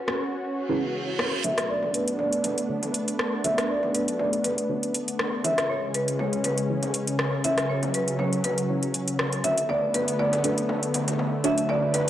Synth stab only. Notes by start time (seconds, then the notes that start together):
0.69 C#4 E4 G#4 B4
1.44 D4 F#4 A4 C#5
2.69 D4 F#4 A4 C#5
3.44 D4 F#4 A4 C#5
4.69 D4 F#4 A4 C#5
5.44 E4 G#4 B4 C#5
6.69 E4 G#4 B4 C#5
7.44 E4 G#4 B4 C#5
8.69 E4 G#4 B4 C#5
9.44 D4 F#4 A4 C#5
10.44 D4 F#4 A4 C#5
11.44 D4 F#4 A4 C#5